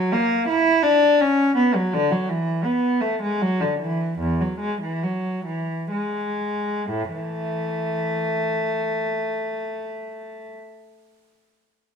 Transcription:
Already playing: F#3
0.13 A#3
0.48 E4
0.83 D4
1.21 C#4
1.57 B3
1.75 F#3
1.94 D3
2.11 F#3
2.29 E3
2.65 B3
3.01 A3
3.23 G#3
3.42 F#3
3.61 D3
3.81 E3
4.20 E2
4.41 F#3
4.60 G#3
4.82 E3
5.04 F#3
5.46 E3
5.91 G#3
6.90 A2
7.12 E3 A3

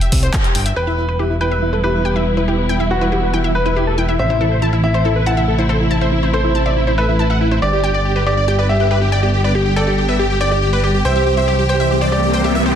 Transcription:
0.01 E5, closed hi-hat
0.12 C2, kick, open hi-hat
0.23 C5, closed hi-hat
0.34 G4, kick, clap, closed hi-hat
0.44 closed hi-hat
0.55 G1 G5, open hi-hat
0.66 E5, closed hi-hat
0.76 E1 E3 G3 B3 E4 B4 G5, crash
0.87 E4 E5
0.98 E4
1.09 B4
1.19 E4 G4
1.30 E4
1.41 E4 B4 G5
1.51 B4 E5
1.62 E4
1.73 A4 B4
1.84 E4 G4 B4
1.94 E4
2.05 G4 G5
2.16 E4 E5
2.26 B4
2.37 E4 B4
2.48 E4 G4
2.58 B4
2.69 E4 G5
2.80 E4 E5
2.91 F#4 B4
3.01 E4 B4
3.12 E4 G4
3.23 B4
3.34 E4 G5
3.44 E4 E5
3.55 B4
3.66 E4 B4
3.76 E4 G4
3.87 A4
3.98 E4 G5
4.09 E4 E5
4.19 A1 C3 A3 E4 C5 E5
4.30 E4 C5
4.41 E4 A4
4.51 C5
4.62 E4 A5
4.73 E4 E5
4.84 E4 E5
4.94 C5
5.05 E4 A4
5.16 B4
5.26 E4 F#5 A5
5.37 E4 E5
5.48 A4
5.58 E4 C5
5.69 A4 C5
5.80 E4
5.91 E4 A5
6.01 C5 E5
6.12 E4
6.23 E4 C5
6.33 A4 C5
6.44 E4
6.55 E4 A5
6.66 D5 E5
6.76 E4
6.87 E4 C5
6.98 A4 B4 E5
7.09 E4
7.19 E4 A5
7.30 E5 F#5
7.41 E4
7.51 E4 C5
7.62 G1 D3 G3 B3 G4 D5
7.73 G4
7.84 G4 G5
7.94 D5
8.05 G4
8.16 G4 B4
8.26 G4 D5
8.37 D5
8.48 G4 G5
8.59 B4 D5
8.69 G4 E5
8.80 G4 B4
8.91 G4 B4
9.01 G4
9.12 D5 G5
9.23 G4 D5
9.33 G4
9.44 B4 D5
9.55 G4
9.66 G4
9.76 A4 D5 G5
9.87 G4 D5
9.98 G4
10.09 B4 E5
10.19 G4
10.30 G4
10.41 D5 G5
10.51 G4 D5
10.62 G4
10.73 B4
10.83 G4
10.94 G4
11.05 C2 E3 C4 C5 E5 G5, riser
11.16 G4 E5
11.26 G4
11.37 C5 E5
11.48 G4
11.59 G4
11.69 G4 C5 G5
11.80 E5
11.91 G4
12.01 C5 D5
12.12 G4 D5
12.23 G4
12.34 C5 G5
12.44 G4 E5
12.55 E5
12.66 G4 C5

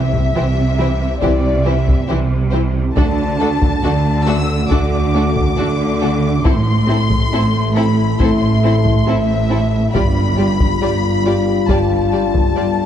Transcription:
Already playing: C2 C3 E5
0.14 taiko
0.35 C2 C3 E3 E4 G4 C5
0.78 E3 E4 G4 C5
1.21 C2 C3 E3 G3 E4 G4 C5 D5, taiko
1.65 E3 E4 G4 C5 E5
1.88 taiko
2.08 C2 C3 E3 E4 G4 C5
2.51 E3 E4 G4 C5
2.96 D2 D3 A3 D4 F#4 A4 A5, taiko
3.40 A3 D4 F#4 A4
3.62 taiko
3.83 D2 D3 A3 D4 F#4 A4
4.26 A3 D4 F#4 A4 E6
4.70 D2 D3 A3 D4 F#4 A4 D6, taiko
5.15 A3 D4 F#4 A4
5.36 taiko
5.57 D2 D3 A3 D4 F#4 A4
6.01 A3 D4 F#4 A4
6.44 A1 A2 A3 C4 E4 A4 C6, taiko
6.87 C4 E4 A4
7.11 taiko
7.32 A1 A2 C4 E4 A4
7.75 C4 E4 A4 B5
8.18 A1 A2 C4 E4 A4 C6, taiko
8.63 C4 E4 A4
8.85 taiko
9.06 A1 A2 C4 E4 A4 E5
9.50 C4 E4 A4
9.93 G1 G2 G3 F4 G4 D5 B5, taiko
10.37 G3 F4 G4 D5
10.60 taiko
10.81 G1 G2 G3 F4 G4 D5
11.25 G3 F4 G4 D5
11.68 G1 G2 G3 F4 G4 D5 A5, taiko
12.12 G3 F4 G4 D5
12.34 taiko
12.56 G1 G2 G3 F4 G4 D5

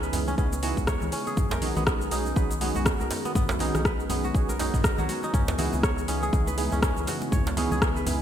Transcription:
Already playing: C#2 C#3 E3 G#3 B3 C#4 D#4 E4 F#4 G#4 C#5
0.03 B4, shaker
0.13 C#2 B3 D#4 E4 G#4, open hi-hat, muted conga, djembe tone, shaker
0.28 C#4, high conga, shaker
0.38 C#2 B3 C#4 D#4 E4 G#4, kick, shaker
0.53 muted conga, shaker
0.63 B3 D#4 E4 F#4 G#4, open hi-hat, shaker
0.77 C#2, kick, shaker
0.87 C#5, kick, cross-stick, muted conga, djembe tone, shaker
1.02 C#2, high conga, low conga, shaker
1.12 C#4, open hi-hat, shaker
1.27 G#4, muted conga, shaker
1.37 B1 D#3 B3 F#4, kick, mid tom, high conga, shaker
1.51 A#4, djembe slap, shaker
1.62 C#4 D#4 F#4 G#4, open hi-hat, muted conga, low conga, shaker
1.75 B1 B3, high conga, low conga, shaker
1.87 B3, kick, cross-stick, shaker
2.01 shaker
2.11 B1 C#4 D#4 F#4 G#4, open hi-hat, muted conga, shaker
2.26 high conga, shaker
2.36 B1 C#4 D#4 F#4 G#4 B4, kick, low conga, shaker
2.51 muted conga, shaker
2.61 B3 C#4 D#4 F#4 G#4, open hi-hat, high conga, shaker
2.75 B1 F#4, high conga, djembe tone, shaker
2.85 kick, cross-stick, muted conga, djembe tone, shaker
3.00 B1 A#4, high conga, shaker
3.11 open hi-hat, djembe slap, shaker
3.25 B3, muted conga, shaker
3.35 B1 B3, kick, mid tom, high conga, shaker
3.49 djembe slap, shaker
3.59 C#4 D#4 F#4 G#4, open hi-hat, muted conga, low conga, shaker
3.75 B1, cross-stick, high conga, low conga, shaker
3.85 B4, kick, cross-stick, shaker
4.00 shaker
4.09 B1 B3 C#4 D#4 F#4 G#4, open hi-hat, muted conga, djembe tone, shaker
4.24 F#4, high conga, shaker
4.35 B1 C#4 D#4 F#4 G#4, kick, shaker
4.49 A#4, muted conga, shaker
4.59 C#4 D#4 F#4 G#4, open hi-hat, djembe slap, shaker
4.74 B1 B3, kick, mid tom, shaker
4.84 A#4, kick, cross-stick, muted conga, djembe tone, shaker
4.98 B1 F#3, high conga, low conga, shaker
5.09 F#4, open hi-hat, shaker
5.23 D#4, muted conga, shaker
5.34 C#2 C#3 E3 C#4, kick, mid tom, high conga, shaker
5.48 djembe slap, shaker
5.58 B3 D#4 E4 F#4 G#4, open hi-hat, muted conga, low conga, shaker
5.73 C#2, high conga, low conga, shaker
5.83 C#5, kick, cross-stick, shaker
5.98 shaker
6.08 C#2 B3 C#4 D#4 E4 G#4, open hi-hat, muted conga, shaker
6.23 G#4, high conga, shaker
6.33 C#2 B3 D#4 E4 G#4, kick, low conga, shaker
6.47 B4, muted conga, shaker
6.58 B3 D#4 E4 G#4, open hi-hat, high conga, shaker
6.72 C#2 C#4, djembe tone, high conga, shaker
6.82 C#4, kick, cross-stick, muted conga, djembe tone, shaker
6.96 C#2, high conga, shaker
7.07 F#4, open hi-hat, djembe slap, shaker
7.22 muted conga, shaker
7.32 C#2 C#5, kick, mid tom, high conga, shaker
7.47 djembe slap, shaker
7.57 B3 C#4 D#4 E4 G#4, open hi-hat, muted conga, low conga, shaker
7.71 C#2 G#4, high conga, low conga, shaker
7.82 kick, cross-stick, shaker
7.96 B4, shaker
8.06 C#2 B3 D#4 E4 G#4, open hi-hat, muted conga, djembe tone, shaker

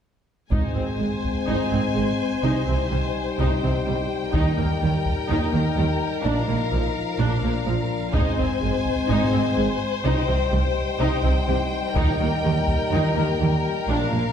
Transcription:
0.50 G#1 G#2 G#3 C4 D#4 C5 G#5, taiko
0.75 G#1 G#2 C4
0.99 G#1 G#2 G#3
1.24 taiko
1.48 G#1 G#2 D#4
1.72 G#1 G#2 C4
1.94 G#1 G#2 G#3
2.43 C2 C3 G3 D#4
2.67 C2 C3 C4
2.90 C2 C3 G3
3.39 C2 C3 D#4 G5
3.62 C2 C3 C4
3.87 C2 C3 G3
4.33 D#2 D#3 D#4 A#4, taiko
4.58 D#2 D#3 A#3
4.82 D#2 D#3 G3
5.05 taiko
5.29 D#2 D#3 D#4
5.52 D#2 D#3 A#3
5.76 D#2 D#3 G3
6.23 A#1 A#2 F3 D4 F5
6.48 A#1 A#2 A#3
6.72 A#1 A#2 F3
7.19 A#1 A#2 D4
7.43 A#1 A#2 A#3
7.66 A#1 A#2 F3
8.13 G#1 G#2 G#3 C4 D#4 C5 G#5, taiko
8.38 G#1 G#2 C4
8.60 G#1 G#2 G#3
8.85 taiko
9.08 G#1 G#2 D#4
9.33 G#1 G#2 C4
9.57 G#1 G#2 G#3
10.04 C2 C3 G3 D#4 G5
10.27 C2 C3 C4
10.51 C2 C3 G3
10.99 C2 C3 D#4
11.23 C2 C3 C4
11.47 C2 C3 G3
11.95 D#2 D#3 D#4 A#4, taiko
12.19 D#2 D#3 A#3
12.44 D#2 D#3 G3
12.68 taiko
12.91 D#2 D#3 D#4
13.15 D#2 D#3 A#3
13.39 D#2 D#3 G3
13.88 A#1 A#2 F3 D4 F5
14.11 A#1 A#2 A#3

